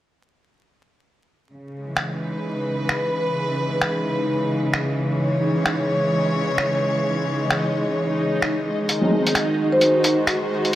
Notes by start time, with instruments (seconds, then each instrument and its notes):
1.50 string section C#3, synth texture D#4 D#5
1.81 string section G#3
1.87 string section E3
1.97 finger snap
2.10 string section B4
2.89 finger snap
3.81 finger snap
4.74 finger snap
5.14 string section C#5
5.66 finger snap
6.58 finger snap
7.50 finger snap
8.42 finger snap
8.89 string section D#3, closed hi-hat
9.01 upright piano F#3 C4 D#4
9.06 upright piano G#4
9.10 upright piano F#3 C4 D#4
9.14 string section F#4, upright piano G#4
9.27 closed hi-hat
9.35 string section C5, finger snap, closed hi-hat
9.72 marimba C5
9.81 closed hi-hat
10.04 closed hi-hat
10.27 finger snap, closed hi-hat
10.65 closed hi-hat